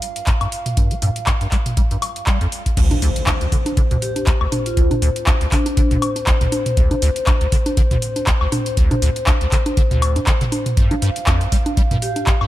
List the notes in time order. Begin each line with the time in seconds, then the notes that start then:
Already playing: F5
0.02 open hi-hat
0.16 closed hi-hat
0.27 G2, kick, clap, closed hi-hat
0.41 G2, closed hi-hat, high woodblock
0.52 open hi-hat
0.66 closed hi-hat, mid tom
0.77 G2, kick, closed hi-hat
0.91 A#3, closed hi-hat
1.02 G2, mid tom, open hi-hat
1.16 closed hi-hat
1.27 G2, kick, clap, closed hi-hat, high woodblock
1.41 G2, closed hi-hat
1.52 G3, kick, clap, open hi-hat
1.66 closed hi-hat, mid tom
1.77 G3, kick, closed hi-hat
1.91 G2, closed hi-hat
2.02 open hi-hat, high woodblock
2.16 closed hi-hat
2.27 G3, kick, clap, closed hi-hat
2.41 F2, closed hi-hat
2.52 open hi-hat
2.66 kick, closed hi-hat
2.77 D2 C5, kick, closed hi-hat, crash, impact
2.91 F3, closed hi-hat, high conga
3.02 D2, open hi-hat
3.16 closed hi-hat
3.27 D2, kick, clap, closed hi-hat, high conga, high woodblock
3.41 D2, closed hi-hat
3.52 D3, kick, open hi-hat
3.66 closed hi-hat, high conga
3.77 D3, kick, closed hi-hat
3.91 D2, closed hi-hat, mid tom
4.02 G4, open hi-hat
4.16 closed hi-hat, high conga
4.27 D2, kick, clap, closed hi-hat
4.41 D2, high woodblock
4.52 mid tom, open hi-hat, high conga
4.66 F4, closed hi-hat
4.77 D2, kick, closed hi-hat
4.91 F3, closed hi-hat, mid tom, high conga
5.02 D2, open hi-hat
5.16 closed hi-hat
5.27 D2, kick, clap, closed hi-hat, high conga, high woodblock
5.41 D2, closed hi-hat
5.52 D3 D4, kick, clap, open hi-hat
5.66 closed hi-hat, high conga
5.77 D3, kick, closed hi-hat
5.91 D2, closed hi-hat, mid tom
6.02 open hi-hat, high woodblock
6.16 closed hi-hat, high conga
6.27 D2, kick, clap, closed hi-hat
6.41 D2, closed hi-hat, mid tom
6.52 open hi-hat, high conga
6.66 closed hi-hat, mid tom
6.77 D2, kick, closed hi-hat
6.91 F3, closed hi-hat, high conga
7.02 D2, open hi-hat
7.16 closed hi-hat
7.27 D2, kick, clap, closed hi-hat, high conga, high woodblock
7.41 D2, closed hi-hat
7.52 D3, kick, open hi-hat
7.66 closed hi-hat, high conga
7.77 D3, kick, closed hi-hat
7.91 D2, closed hi-hat, mid tom
8.02 open hi-hat
8.16 closed hi-hat, high conga
8.27 D2, kick, clap, closed hi-hat
8.41 D2, high woodblock
8.52 mid tom, open hi-hat, high conga
8.66 closed hi-hat
8.77 D2, kick, closed hi-hat
8.91 F3, closed hi-hat, mid tom, high conga
9.02 D2, open hi-hat
9.16 closed hi-hat
9.27 D2, kick, clap, closed hi-hat, high conga, high woodblock
9.41 D2, closed hi-hat
9.52 D3, kick, clap, open hi-hat
9.66 closed hi-hat, high conga
9.77 D3, kick, closed hi-hat
9.91 D2, closed hi-hat, mid tom
10.02 open hi-hat, high woodblock
10.16 A2, closed hi-hat, high conga
10.27 D3, kick, clap, closed hi-hat
10.41 D3, closed hi-hat, mid tom
10.52 open hi-hat, high conga
10.66 closed hi-hat, mid tom
10.77 G2 F5, kick, closed hi-hat
10.91 A#3, closed hi-hat, high conga
11.02 G2, open hi-hat
11.16 closed hi-hat
11.27 F2, kick, clap, closed hi-hat, high conga, high woodblock
11.41 G2, closed hi-hat
11.52 G3, kick, open hi-hat
11.66 closed hi-hat, high conga
11.77 G3, kick, closed hi-hat
11.91 G2, closed hi-hat, mid tom
12.02 G4, open hi-hat
12.16 closed hi-hat, high conga
12.27 G2, kick, clap, closed hi-hat
12.41 G2, high woodblock